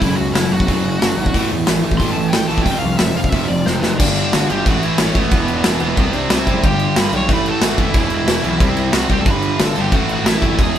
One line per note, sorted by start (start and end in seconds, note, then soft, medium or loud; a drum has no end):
0.00 0.13 F#1 loud
0.00 0.19 F#2 medium
0.00 0.17 C#3 loud
0.00 0.17 F#3 loud
0.00 1.35 A3 medium
0.00 0.16 E4 loud
0.00 kick loud
0.00 open hi-hat medium
0.16 0.30 C#2 medium
0.16 0.33 F#2 medium
0.16 0.34 C#3 medium
0.16 0.34 F#3 loud
0.16 0.33 F#4 loud
0.34 0.46 F#1 medium
0.34 0.52 F#2 medium
0.34 0.51 C#3 loud
0.34 0.50 F#3 medium
0.34 0.52 E4 loud
0.34 snare loud
0.34 open hi-hat medium
0.51 0.63 F#1 medium
0.51 0.66 F#2 medium
0.51 0.67 C#3 medium
0.51 0.67 F#3 loud
0.51 1.48 F#4 loud
0.60 kick medium
0.68 0.80 F#1 loud
0.68 0.85 F#2 loud
0.68 0.84 C#3 loud
0.68 0.83 F#3 loud
0.68 kick loud
0.68 open hi-hat medium
0.84 0.96 F#1 medium
0.84 0.99 F#2 medium
0.84 1.00 C#3 loud
0.84 1.01 F#3 medium
1.01 1.13 F#1 medium
1.01 1.18 F#2 medium
1.01 1.17 C#3 medium
1.01 1.16 F#3 medium
1.01 snare loud
1.01 open hi-hat medium
1.17 1.34 G#1 medium
1.17 1.34 F#2 medium
1.17 1.33 C#3 medium
1.17 1.33 F#3 medium
1.26 kick medium
1.34 1.46 A1 loud
1.34 1.52 A2 loud
1.34 1.51 E3 medium
1.34 1.51 A3 loud
1.34 kick loud
1.34 open hi-hat medium
1.51 1.63 E2 loud
1.51 1.66 A2 medium
1.51 1.68 E3 loud
1.51 1.69 A3 loud
1.67 1.79 A1 loud
1.67 1.84 A2 medium
1.67 1.83 E3 loud
1.67 1.83 A3 medium
1.67 snare loud
1.67 open hi-hat medium
1.84 1.96 A1 medium
1.84 2.00 A2 medium
1.84 2.00 E3 medium
1.84 2.01 A3 loud
1.92 kick medium
1.97 2.12 A1 loud
1.97 2.17 A2 loud
1.97 2.12 C6 loud
1.97 kick loud
1.97 open hi-hat medium
2.01 2.16 E3 loud
2.01 2.16 A3 loud
2.12 2.30 A5 medium
2.16 2.28 A1 medium
2.16 2.32 A2 medium
2.16 2.33 E3 medium
2.16 2.34 A3 medium
2.28 2.47 G5 loud
2.33 2.45 A1 loud
2.33 2.50 A2 medium
2.33 2.49 E3 medium
2.33 2.49 A3 loud
2.33 snare loud
2.33 open hi-hat medium
2.47 2.62 A1 medium
2.47 2.66 E3 medium
2.47 2.65 A3 loud
2.47 2.64 A5 medium
2.51 2.65 A2 medium
2.58 kick medium
2.62 2.78 F1 medium
2.62 2.83 F2 loud
2.62 2.83 C3 loud
2.62 2.78 G5 loud
2.62 kick loud
2.66 2.81 F3 loud
2.66 open hi-hat medium
2.78 2.97 F5 loud
2.83 2.95 C2 medium
2.83 2.98 F2 medium
2.83 2.98 C3 medium
2.83 3.00 F3 loud
2.97 3.11 F1 loud
2.97 3.16 F2 medium
2.97 3.16 C3 medium
2.97 3.14 F3 medium
2.97 3.14 E5 medium
2.97 snare loud
2.97 open hi-hat medium
3.16 3.28 F1 medium
3.16 3.31 F2 medium
3.16 3.32 C3 loud
3.16 3.32 F3 loud
3.16 3.29 F5 medium
3.24 kick medium
3.29 3.44 F1 loud
3.29 3.49 F2 loud
3.29 3.48 C3 loud
3.29 3.48 E5 medium
3.29 kick loud
3.29 open hi-hat medium
3.34 3.48 F3 loud
3.48 3.62 F1 medium
3.48 3.65 F2 medium
3.48 3.66 C3 medium
3.48 3.66 F3 medium
3.48 3.65 D5 loud
3.66 3.78 F1 medium
3.66 3.83 F2 medium
3.66 3.82 C3 medium
3.66 3.81 F3 loud
3.66 3.97 C4 medium
3.66 3.68 C5 loud
3.66 3.98 C5 loud
3.66 snare medium
3.79 3.93 F1 medium
3.79 3.98 F3 loud
3.79 3.97 B4 loud
3.79 snare medium
3.83 3.99 F2 medium
3.83 3.98 C3 medium
3.98 4.23 G1 loud
3.98 4.32 G2 medium
3.98 4.32 D3 loud
3.98 4.33 G3 loud
3.98 4.29 D4 medium
3.98 4.33 D5 loud
3.98 kick loud
3.98 crash loud
3.98 crash medium
4.17 crash medium
4.33 4.44 G1 medium
4.33 4.50 G2 medium
4.33 4.50 D3 medium
4.33 4.49 G3 loud
4.33 4.48 F#4 medium
4.33 4.51 F#5 loud
4.33 snare loud
4.33 crash medium
4.49 4.61 G1 medium
4.49 4.65 G2 medium
4.49 4.65 D3 medium
4.49 4.65 G3 loud
4.49 4.64 G4 medium
4.49 4.67 G5 medium
4.49 crash medium
4.66 4.89 A1 loud
4.66 4.98 A2 loud
4.66 4.99 E3 loud
4.66 5.00 A3 loud
4.66 4.82 F#4 medium
4.66 4.83 F#5 medium
4.66 kick loud
4.66 crash medium
4.83 4.98 E4 medium
4.83 5.01 E5 loud
4.83 crash medium
4.98 5.10 A1 medium
4.98 5.16 A2 medium
4.98 5.16 E3 medium
4.98 5.15 A3 loud
4.98 5.15 C#4 medium
4.98 snare loud
4.98 crash loud
5.04 5.18 C#5 loud
5.15 5.27 A1 medium
5.15 5.32 A2 medium
5.15 5.31 E3 medium
5.15 5.31 A3 medium
5.15 6.11 B3 medium
5.15 6.15 B4 medium
5.15 kick medium
5.15 crash medium
5.31 5.43 E1 medium
5.31 5.65 E2 loud
5.31 5.66 B2 medium
5.31 5.66 E3 loud
5.31 kick loud
5.31 crash loud
5.48 5.60 E1 medium
5.48 crash medium
5.64 5.76 E1 loud
5.64 5.82 E2 medium
5.64 5.81 B2 loud
5.64 5.80 E3 loud
5.64 snare loud
5.64 crash medium
5.80 5.93 E1 medium
5.80 5.97 E2 medium
5.80 5.97 B2 medium
5.80 5.97 E3 loud
5.80 crash medium
5.97 6.09 C2 loud
5.97 6.30 C3 loud
5.97 6.30 G3 loud
5.97 6.31 C4 loud
5.97 kick loud
5.97 crash medium
6.13 6.25 C2 medium
6.13 6.29 D4 medium
6.13 6.32 D5 loud
6.13 crash medium
6.29 6.41 C2 loud
6.29 6.47 C3 medium
6.29 6.46 G3 medium
6.29 6.46 C4 loud
6.29 6.61 E4 medium
6.29 snare loud
6.29 crash medium
6.34 6.63 E5 loud
6.47 6.59 F#1 medium
6.47 6.63 C3 medium
6.47 6.63 G3 medium
6.47 6.63 C4 loud
6.47 kick medium
6.47 crash medium
6.63 6.86 G1 loud
6.63 6.95 G2 loud
6.63 6.96 D3 loud
6.63 6.96 G3 loud
6.63 6.94 G4 medium
6.63 6.99 G5 loud
6.63 kick loud
6.63 crash medium
6.80 crash medium
6.95 7.07 G1 loud
6.95 7.13 G2 medium
6.95 7.12 D3 medium
6.95 7.11 G3 loud
6.95 7.12 B4 medium
6.95 snare loud
6.95 crash loud
7.00 7.15 B5 loud
7.12 7.29 B1 medium
7.12 7.29 G2 medium
7.12 7.28 D3 loud
7.12 7.28 G3 loud
7.12 7.29 C#5 medium
7.12 crash medium
7.17 7.30 C#6 loud
7.28 7.52 A1 medium
7.28 7.62 A2 loud
7.28 7.62 E3 loud
7.28 7.62 A3 loud
7.28 7.45 B4 medium
7.28 kick loud
7.28 crash medium
7.33 7.48 B5 loud
7.46 7.62 A4 medium
7.46 crash medium
7.51 7.65 A5 loud
7.61 7.73 A1 medium
7.61 7.79 A2 medium
7.61 7.79 E3 medium
7.61 7.77 A3 medium
7.61 7.78 F#4 medium
7.61 snare loud
7.61 crash loud
7.66 7.81 F#5 loud
7.78 7.90 F#1 loud
7.78 7.95 A2 medium
7.78 7.95 E3 medium
7.78 7.94 A3 loud
7.78 8.91 E4 medium
7.78 kick medium
7.78 crash medium
7.83 8.96 E5 loud
7.94 8.06 E1 loud
7.94 8.26 E2 loud
7.94 8.27 B2 loud
7.94 8.27 E3 loud
7.94 kick loud
7.94 crash medium
8.09 8.21 E1 medium
8.09 crash medium
8.26 8.38 E1 loud
8.26 8.44 E2 loud
8.26 8.43 B2 medium
8.26 8.42 E3 loud
8.26 snare loud
8.26 crash loud
8.44 8.56 B1 medium
8.44 8.60 E2 medium
8.44 8.59 B2 medium
8.44 8.60 E3 loud
8.44 crash medium
8.59 8.72 C2 medium
8.59 8.92 C3 loud
8.59 8.93 G3 loud
8.59 8.93 C4 loud
8.59 kick loud
8.59 crash medium
8.75 8.87 C2 medium
8.75 crash medium
8.93 9.05 C2 medium
8.93 9.11 C3 medium
8.93 9.10 G3 medium
8.93 9.09 C4 loud
8.93 9.09 F#4 medium
8.93 snare loud
8.93 crash loud
8.97 9.11 F#5 loud
9.10 9.22 C2 medium
9.10 9.27 C3 medium
9.10 9.26 G3 loud
9.10 9.26 C4 loud
9.10 9.18 G4 medium
9.10 9.19 G5 loud
9.10 kick medium
9.10 crash medium
9.20 9.27 A4 medium
9.20 9.28 A5 loud
9.26 9.49 G1 loud
9.26 9.58 G2 loud
9.26 9.58 D3 loud
9.26 9.60 G3 loud
9.26 9.59 B4 medium
9.26 kick loud
9.26 crash medium
9.30 9.59 B5 loud
9.42 crash medium
9.59 9.71 G1 medium
9.59 9.77 G2 medium
9.59 9.76 D3 loud
9.59 9.75 G3 loud
9.59 snare loud
9.59 crash medium
9.63 9.77 A4 medium
9.63 9.81 A5 loud
9.75 9.88 G1 medium
9.75 9.93 G2 medium
9.75 9.92 D3 medium
9.75 9.92 G3 loud
9.75 crash medium
9.80 9.94 G4 medium
9.80 9.96 G5 loud
9.92 10.15 A1 loud
9.92 10.24 A2 loud
9.92 10.25 E3 loud
9.92 10.25 A3 loud
9.92 10.09 F#4 medium
9.92 kick loud
9.92 crash medium
9.97 10.12 F#5 medium
10.09 crash medium
10.13 10.27 F#4 medium
10.13 10.28 F#5 medium
10.24 10.36 A1 loud
10.24 10.42 A2 medium
10.24 10.42 E3 loud
10.24 10.41 A3 medium
10.24 10.57 E4 medium
10.24 10.61 E5 loud
10.24 snare loud
10.24 crash loud
10.42 10.54 F#1 loud
10.42 10.58 A2 medium
10.42 10.58 E3 medium
10.42 10.57 A3 loud
10.42 kick medium
10.42 crash medium
10.58 10.70 E1 medium
10.58 10.79 E2 loud
10.58 10.79 B2 loud
10.58 10.79 E3 loud
10.58 10.79 G#4 medium
10.58 10.79 G#5 medium
10.58 kick loud
10.58 crash medium